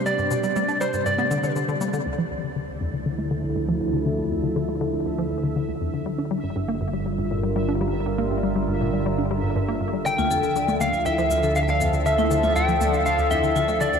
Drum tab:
SH |xxxxxxxxxxxxxxxx|----------------|----------------|----------------|
CG |----o----o----o-|----------------|----------------|----------------|

SH |----------------|xxxxxxxxxxxxxxxx|xxxxxxxxxxxxxxxx|
CG |----------------|-o---oo---------|-o-o--o---------|